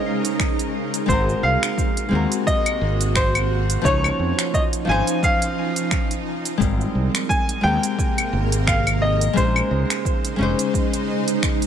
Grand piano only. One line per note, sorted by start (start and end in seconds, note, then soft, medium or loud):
0.00 0.70 D#5 medium
1.08 1.44 C5 medium
1.43 2.50 F5 medium
2.47 3.18 D#5 medium
3.16 3.87 C5 medium
3.85 4.56 C#5 loud
4.54 4.62 D#5 medium
4.89 5.24 G#5 loud
5.24 6.23 F5 loud
7.29 7.61 G#5 medium
7.64 8.70 G5 loud
8.67 9.03 F5 medium
9.02 9.34 D#5 medium
9.37 10.36 C5 medium